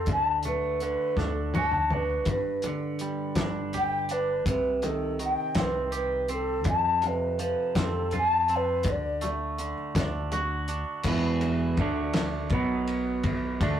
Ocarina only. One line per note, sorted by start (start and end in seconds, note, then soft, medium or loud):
0.12 0.46 A5 loud
0.47 0.82 B4 medium
0.84 1.19 B4 medium
1.18 1.53 A4 medium
1.57 1.96 A5 medium
1.94 2.28 B4 loud
2.31 2.65 B4 loud
3.78 4.14 G5 loud
4.12 4.47 B4 medium
4.48 4.87 B4 loud
4.85 5.20 A4 medium
5.24 5.62 G5 medium
5.60 5.94 B4 loud
5.95 6.30 B4 medium
6.33 6.67 A4 loud
6.69 7.09 A5 medium
7.08 7.41 B4 medium
7.42 7.76 B4 medium
7.81 8.14 A4 medium
7.81 7.86 A#4 medium
8.18 8.58 A5 loud
8.56 8.93 B4 loud
8.92 9.24 D5 medium